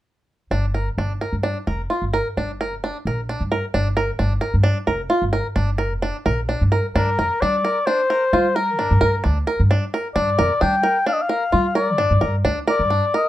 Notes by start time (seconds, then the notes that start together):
0.51 G1 D4
0.74 A#4
0.98 G1 D4
1.21 A#4
1.33 G2
1.43 D4
1.67 F1 A#4
1.90 F4
2.02 G1
2.14 A#4
2.37 G1 D4
2.61 A#4
2.71 F1
2.84 D4
3.05 A#1 A#4
3.29 D4
3.41 G2
3.52 A#4
3.74 G1 D4
3.97 A#4
4.19 G1 D4
4.41 A#4
4.54 G2
4.64 D4
4.87 F1 A#4
5.10 F4
5.22 G1
5.33 A#4
5.56 G1 D4
5.78 A#4
5.91 F1
6.02 D4
6.26 A#1 A#4
6.49 D4
6.61 G2
6.72 A#4
6.95 G2 D4 A#4
7.19 F2 A#4
7.41 G3 D4 D5
7.65 A#4
7.86 D4 C5
8.10 A#4
8.33 G3 F4
8.55 A#4
8.79 G2 D4
8.91 G2
9.01 G2 A#4
9.24 D2 D4
9.47 A#4
9.60 G2
9.71 D4
9.94 A#4
10.15 G2 D4 D5
10.39 F2 A#4
10.61 G3 D4 G5
10.83 A#4
11.06 D4 F5
11.13 D#5
11.22 F5
11.29 A#4
11.52 G3 F4
11.75 A#4 D5
11.98 G2 D4
12.11 G2
12.21 G2 A#4
12.45 D2 D4
12.68 A#4 D5
12.79 G2
12.90 D4
13.14 A#4 D#5